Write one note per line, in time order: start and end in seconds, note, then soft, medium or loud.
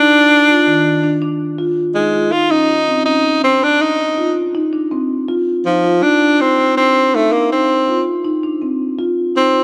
0.00 1.20 D4 loud
0.11 0.37 D4 medium
0.48 0.61 F4 medium
0.67 0.93 D#3 medium
1.03 1.16 D4 medium
1.22 1.48 D4 medium
1.58 1.85 F4 medium
1.95 2.33 G#3 medium
1.95 2.09 D#4 medium
2.14 2.27 F4 medium
2.32 2.46 D#4 medium
2.32 2.52 F4 medium
2.50 2.64 C#4 medium
2.50 3.05 D#4 medium
2.69 2.83 D#4 medium
2.88 3.01 C4 medium
3.06 3.33 C#4 medium
3.06 3.40 D#4 medium
3.43 3.65 C4 medium
3.43 3.57 D4 medium
3.62 3.75 D4 medium
3.62 3.83 D4 medium
3.81 4.07 D#4 medium
3.81 4.36 D#4 medium
4.17 4.44 F4 medium
4.55 4.68 D#4 medium
4.73 4.86 D4 medium
4.91 5.18 C4 medium
5.28 5.55 F4 medium
5.66 6.04 F3 medium
5.66 5.79 D#4 medium
5.84 5.98 F4 medium
6.03 6.42 D4 medium
6.03 6.16 D#4 medium
6.21 6.35 D4 medium
6.40 6.77 C4 medium
6.40 6.53 D#4 medium
6.58 6.72 C4 medium
6.77 7.17 C4 medium
6.77 7.04 D4 medium
7.14 7.34 A3 medium
7.14 7.27 D#4 medium
7.32 7.51 A#3 medium
7.32 7.45 D4 medium
7.51 8.03 C4 medium
7.51 7.77 D#4 medium
7.88 8.15 F4 medium
8.25 8.38 D#4 medium
8.43 8.57 D4 medium
8.62 8.88 C4 medium
8.99 9.25 F4 medium
9.36 9.64 C4 medium
9.36 9.49 D#4 medium